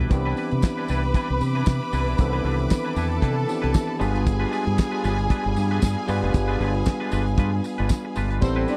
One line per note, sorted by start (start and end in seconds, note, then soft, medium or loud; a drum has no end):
0.00 0.10 G3 soft
0.00 0.10 D4 medium
0.09 0.32 C2 loud
0.09 2.14 E3 medium
0.09 2.14 B3 medium
0.09 2.15 C4 medium
0.09 2.15 D4 medium
0.09 2.15 G4 medium
0.09 3.96 B4 medium
0.09 2.93 B4 medium
0.09 3.96 E5 medium
0.09 8.38 B5 medium
0.09 2.93 B5 medium
0.09 3.96 D6 loud
0.09 muted clean electric guitar stroke soft
0.09 kick loud
0.09 closed hi-hat medium
0.09 tambourine soft
0.25 0.36 G3 medium
0.25 0.36 D4 medium
0.25 0.37 E4 medium
0.25 0.37 B4 medium
0.37 0.49 G3 medium
0.37 0.50 D4 medium
0.37 0.50 E4 medium
0.37 0.50 B4 medium
0.37 open hi-hat medium
0.37 tambourine soft
0.51 0.61 C3 medium
0.51 closed hi-hat soft
0.62 muted clean electric guitar stroke soft
0.62 kick loud
0.62 snare loud
0.62 clap medium
0.62 closed hi-hat medium
0.62 tambourine medium
0.77 0.88 G3 medium
0.77 0.88 D4 soft
0.77 0.88 E4 medium
0.77 0.87 B4 soft
0.88 1.11 C2 medium
0.88 1.05 G3 loud
0.88 1.04 D4 medium
0.88 1.03 E4 loud
0.88 1.02 B4 loud
0.88 open hi-hat medium
0.88 tambourine medium
1.03 muted clean electric guitar stroke soft
1.03 closed hi-hat soft
1.14 1.31 G3 medium
1.14 1.29 D4 medium
1.14 1.29 E4 medium
1.14 1.28 B4 medium
1.14 kick loud
1.14 closed hi-hat medium
1.14 tambourine soft
1.29 1.39 C2 medium
1.29 muted clean electric guitar stroke soft
1.41 1.63 C3 medium
1.41 muted clean electric guitar stroke soft
1.41 open hi-hat medium
1.41 tambourine medium
1.55 1.66 G3 soft
1.55 1.66 D4 medium
1.55 1.66 E4 soft
1.55 1.65 B4 medium
1.55 closed hi-hat soft
1.66 1.79 C3 loud
1.66 muted clean electric guitar stroke soft
1.66 kick loud
1.66 snare medium
1.66 clap medium
1.66 closed hi-hat medium
1.66 tambourine medium
1.82 muted clean electric guitar stroke soft
1.93 2.07 C2 medium
1.93 2.08 G3 medium
1.93 2.08 D4 medium
1.93 2.07 E4 medium
1.93 2.07 B4 medium
1.93 open hi-hat medium
1.93 tambourine medium
2.07 2.17 B1 medium
2.07 2.18 G3 medium
2.07 2.18 D4 medium
2.07 2.18 E4 medium
2.07 2.18 B4 medium
2.07 closed hi-hat medium
2.18 2.40 C2 loud
2.18 2.25 D#3 medium
2.18 3.46 B3 medium
2.18 3.46 C4 medium
2.18 3.47 D4 medium
2.18 3.47 A4 medium
2.18 kick loud
2.18 closed hi-hat medium
2.18 tambourine medium
2.24 3.47 E3 medium
2.33 2.43 G3 medium
2.33 2.44 D4 medium
2.33 2.45 E4 medium
2.33 2.45 B4 medium
2.44 2.66 C2 loud
2.44 2.57 G3 medium
2.44 2.58 D4 medium
2.44 2.58 E4 medium
2.44 2.58 B4 medium
2.44 open hi-hat medium
2.59 muted clean electric guitar stroke soft
2.59 closed hi-hat soft
2.70 muted clean electric guitar stroke soft
2.70 kick loud
2.70 snare loud
2.70 clap medium
2.70 closed hi-hat medium
2.70 tambourine loud
2.84 2.95 G3 soft
2.84 2.95 D4 soft
2.84 2.95 E4 medium
2.84 2.95 B4 soft
2.96 3.18 E2 medium
2.96 3.12 G3 medium
2.96 3.11 D4 medium
2.96 3.10 E4 medium
2.96 3.98 A4 medium
2.96 3.10 B4 medium
2.96 3.98 A5 medium
2.96 open hi-hat medium
2.96 tambourine medium
3.11 muted clean electric guitar stroke soft
3.11 closed hi-hat soft
3.22 3.44 C3 loud
3.22 3.38 G3 medium
3.22 3.37 D4 loud
3.22 3.36 E4 medium
3.22 3.35 B4 medium
3.22 kick loud
3.22 closed hi-hat medium
3.37 muted clean electric guitar stroke soft
3.48 4.00 E3 medium
3.48 3.99 B3 medium
3.48 4.01 C4 soft
3.48 4.00 D4 soft
3.48 4.01 G4 medium
3.48 muted clean electric guitar stroke soft
3.48 open hi-hat medium
3.48 tambourine medium
3.62 3.73 C2 medium
3.62 3.72 G3 soft
3.62 3.73 D4 medium
3.62 3.73 E4 medium
3.62 3.72 B4 medium
3.62 closed hi-hat soft
3.73 muted clean electric guitar stroke soft
3.73 kick loud
3.73 snare medium
3.73 clap medium
3.73 closed hi-hat medium
3.73 tambourine loud
3.87 muted clean electric guitar stroke soft
3.99 4.44 G1 loud
3.99 6.04 G3 medium
3.99 8.38 G3 medium
3.99 4.14 G#3 medium
3.99 6.04 B3 medium
3.99 4.14 D4 medium
3.99 6.05 D4 medium
3.99 4.13 F4 medium
3.99 6.05 F4 medium
3.99 8.12 G#4 medium
3.99 6.05 G#4 medium
3.99 4.13 B4 medium
3.99 8.38 F5 medium
3.99 8.38 G#5 medium
3.99 8.12 G#5 loud
3.99 open hi-hat medium
3.99 tambourine medium
4.14 4.24 G#3 medium
4.14 4.25 D4 medium
4.14 4.25 F4 medium
4.14 4.25 B4 medium
4.14 closed hi-hat medium
4.25 muted clean electric guitar stroke soft
4.25 kick loud
4.25 closed hi-hat medium
4.25 tambourine medium
4.40 4.49 G#3 medium
4.40 4.50 D4 medium
4.40 4.51 F4 medium
4.40 4.51 B4 medium
4.51 4.64 G#3 medium
4.51 4.65 D4 medium
4.51 4.65 F4 medium
4.51 4.65 B4 medium
4.51 open hi-hat medium
4.51 tambourine soft
4.66 4.77 G2 loud
4.66 muted clean electric guitar stroke soft
4.66 closed hi-hat soft
4.77 muted clean electric guitar stroke soft
4.77 kick loud
4.77 snare loud
4.77 clap loud
4.77 closed hi-hat medium
4.77 tambourine medium
4.91 5.03 G#3 soft
4.91 5.03 D4 medium
4.91 5.03 F4 medium
4.91 5.02 B4 medium
5.04 5.26 G1 loud
5.04 5.20 G#3 medium
5.04 5.19 D4 medium
5.04 5.18 F4 medium
5.04 5.18 B4 loud
5.04 snare soft
5.04 open hi-hat medium
5.04 tambourine medium
5.19 muted clean electric guitar stroke soft
5.19 closed hi-hat soft
5.30 5.46 G#3 medium
5.30 5.45 D4 medium
5.30 5.44 F4 medium
5.30 5.44 B4 medium
5.30 kick loud
5.30 closed hi-hat medium
5.30 tambourine soft
5.45 5.55 G1 medium
5.45 muted clean electric guitar stroke soft
5.56 5.78 G2 loud
5.56 muted clean electric guitar stroke soft
5.56 open hi-hat medium
5.56 tambourine medium
5.71 5.81 G#3 medium
5.71 5.81 D4 medium
5.71 5.81 F4 medium
5.71 5.81 B4 medium
5.71 closed hi-hat soft
5.82 5.95 G2 loud
5.82 muted clean electric guitar stroke soft
5.82 kick medium
5.82 snare medium
5.82 clap medium
5.82 closed hi-hat medium
5.82 tambourine loud
5.97 muted clean electric guitar stroke soft
6.07 6.21 G2 medium
6.07 8.12 G3 medium
6.07 6.23 G#3 medium
6.07 8.12 B3 medium
6.07 8.12 D4 medium
6.07 6.22 D4 medium
6.07 8.13 F4 medium
6.07 6.22 F4 loud
6.07 6.21 B4 loud
6.07 8.13 B4 medium
6.07 open hi-hat medium
6.07 tambourine medium
6.22 6.33 F1 medium
6.22 6.33 G#3 medium
6.22 6.33 D4 medium
6.22 6.33 F4 medium
6.22 6.33 B4 medium
6.22 closed hi-hat medium
6.34 6.56 G1 medium
6.34 kick loud
6.34 closed hi-hat medium
6.34 tambourine medium
6.48 6.58 G#3 medium
6.48 6.59 D4 medium
6.48 6.59 F4 medium
6.48 6.60 B4 medium
6.59 6.82 G1 loud
6.59 6.72 G#3 medium
6.59 6.73 D4 medium
6.59 6.73 F4 medium
6.59 6.73 B4 medium
6.59 open hi-hat medium
6.75 muted clean electric guitar stroke soft
6.75 closed hi-hat soft
6.86 muted clean electric guitar stroke soft
6.86 kick loud
6.86 snare loud
6.86 clap medium
6.86 closed hi-hat medium
6.86 tambourine medium
7.00 7.10 G#3 soft
7.00 7.11 D4 soft
7.00 7.11 F4 medium
7.00 7.11 B4 medium
7.11 7.34 G1 medium
7.11 7.28 G#3 loud
7.11 7.26 D4 loud
7.11 7.26 F4 medium
7.11 7.25 B4 loud
7.11 open hi-hat medium
7.11 tambourine medium
7.26 muted clean electric guitar stroke soft
7.26 closed hi-hat soft
7.37 7.60 G2 loud
7.37 7.54 G#3 medium
7.37 7.52 D4 medium
7.37 7.52 F4 medium
7.37 7.51 B4 medium
7.37 kick loud
7.37 closed hi-hat medium
7.37 tambourine soft
7.64 muted clean electric guitar stroke soft
7.64 open hi-hat medium
7.64 tambourine medium
7.78 7.89 G1 loud
7.78 7.89 G#3 medium
7.78 7.89 D4 medium
7.78 7.89 F4 medium
7.78 7.89 B4 medium
7.78 closed hi-hat soft
7.89 kick loud
7.89 snare medium
7.89 clap medium
7.89 closed hi-hat medium
7.89 tambourine loud
8.05 muted clean electric guitar stroke soft
8.16 8.38 G1 medium
8.16 8.31 G#3 medium
8.16 8.30 D4 medium
8.16 8.30 F4 medium
8.16 8.29 B4 medium
8.16 open hi-hat medium
8.16 tambourine medium
8.30 8.41 G#3 medium
8.30 8.41 D4 medium
8.30 8.41 F4 medium
8.30 8.41 B4 medium
8.30 closed hi-hat soft
8.41 8.64 A1 loud
8.41 8.77 G3 medium
8.41 8.77 B3 medium
8.41 8.77 C4 medium
8.41 8.54 C4 medium
8.41 8.77 E4 medium
8.41 8.77 A4 medium
8.41 8.54 C5 loud
8.41 8.77 G5 medium
8.41 8.77 B5 medium
8.41 8.77 C6 medium
8.41 muted clean electric guitar stroke soft
8.41 kick loud
8.41 crash loud
8.41 tambourine medium
8.56 8.66 G3 medium
8.56 8.66 C4 medium
8.56 8.67 E4 medium
8.56 8.68 B4 medium
8.67 8.77 G3 medium
8.67 8.77 C4 medium
8.67 8.77 D4 medium
8.67 8.77 E4 medium
8.67 8.77 B4 medium
8.67 8.77 D5 medium
8.67 open hi-hat medium
8.67 tambourine soft